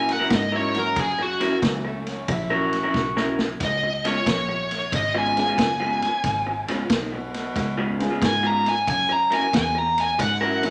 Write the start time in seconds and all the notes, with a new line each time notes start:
Already playing: A#2 F#3 C#4 E4 A#4 G#5
0.09 F#5, snare, ride
0.19 F#3 C#4 E4 A#4
0.30 G#2, kick, snare, ride
0.35 D#5
0.52 F#3 C#4 E4 A#4
0.57 C#5
0.74 F#3 A#3 C#4 E4 F#4, snare, ride
0.79 A#4
0.96 F#2 G#4, kick, snare, ride
1.19 F#4, muted clean electric guitar stroke
1.40 F#3 C#4 E4 A#4, snare, ride
1.61 C#2 F#3 A#3 C#4 E4 F#4, muted clean electric guitar stroke, kick, snare, ride
1.65 E3
1.85 A3, muted clean electric guitar stroke
2.07 C#4, snare, ride
2.28 A#1 E4, muted clean electric guitar stroke, kick, ride
2.50 F#3 C#4 E4 F#4 A#4
2.73 snare, ride
2.83 F#3 C#4 E4 A#4
2.94 B1, kick, snare
3.17 F#3 C#4 E4 A#4, snare
3.39 snare
3.60 C#2 D#5, kick, snare, ride
3.83 muted clean electric guitar stroke
4.05 C#3 G#3 B3 F4 C#5, snare, ride
4.26 A#1, muted clean electric guitar stroke, kick, snare, ride
4.49 muted clean electric guitar stroke
4.71 snare, ride
4.92 G#1 D#5, muted clean electric guitar stroke, kick, ride
5.14 C#3 G#3 B3 F4 G#5
5.37 G#3 B3 C#4 F4 G#4 G#5, snare, ride
5.48 C#3 G#3 B3 F4
5.58 F#1, kick, snare, ride
5.80 C#3 G#3 B3 F4
6.02 muted fingered electric bass stroke, snare, ride
6.24 G#1, kick, snare, ride
6.46 muted clean electric guitar stroke
6.68 C#3 G#3 B3 F4, muted fingered electric bass stroke, snare, ride
6.90 B1 D#3, muted clean electric guitar stroke, kick, snare, ride
7.12 B2, muted clean electric guitar stroke
7.34 snare, ride
7.56 C#2, muted clean electric guitar stroke, kick, snare, ride
7.78 C#3 G#3 B3 F4
8.00 G#3 B3 C#4 F4 G#4, snare, ride
8.10 C#3 G#3 B3 F4
8.22 G#2 G#5, kick, snare, ride
8.43 C#3 G#3 B3 F4 A#5
8.66 G#5, snare, ride
8.87 F#2 G#5, kick, ride
9.09 A#5, muted clean electric guitar stroke
9.30 F#3 C#4 E4 A#4 G#5, snare, ride
9.53 E2 G#5, muted clean electric guitar stroke, kick, snare, ride
9.75 A#5, muted clean electric guitar stroke
9.98 G#5, snare, ride
10.18 G#2 F#5, muted clean electric guitar stroke, kick, snare, ride
10.41 F#3 C#4 E4 A#4
10.62 F#3 A#3 C#4 E4 F#4, snare, ride